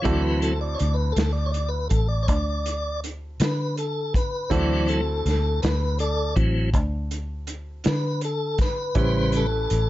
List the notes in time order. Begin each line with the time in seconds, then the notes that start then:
0.02 D2 E3 F#3 C4 E4 F#4 A4 D5, kick, closed hi-hat
0.22 B4
0.42 A4, closed hi-hat
0.61 D5
0.75 C#5 D5
0.79 D2, closed hi-hat
0.94 B4
1.12 A4
1.16 D2, snare, closed hi-hat
1.33 D5
1.46 C#5
1.52 D5, closed hi-hat
1.69 B4
1.90 A1 A4, kick, closed hi-hat
2.08 D5
2.23 C#5
2.28 D2 D5, kick, closed hi-hat
2.66 closed hi-hat
3.04 closed hi-hat
3.40 D3 B4, snare, closed hi-hat
3.77 A4, closed hi-hat
4.14 B4, kick, closed hi-hat
4.50 D2 E3 F#3 C4 E4 F#4 A4 D5, kick, closed hi-hat
4.88 A4, closed hi-hat
5.26 D2, snare, closed hi-hat
5.62 D2 B4, snare, closed hi-hat
5.99 A4 D5, closed hi-hat
6.36 A1 E3 F#3 C4, kick, closed hi-hat
6.74 D2, kick, closed hi-hat
7.11 closed hi-hat
7.47 closed hi-hat
7.84 D3 B4, snare, closed hi-hat
8.21 A4, closed hi-hat
8.58 B4, kick, snare, closed hi-hat
8.95 A1 C#3 G3 C#4 E4 G4 B4, kick, closed hi-hat
8.99 C5
9.32 A4, closed hi-hat
9.70 A1, closed hi-hat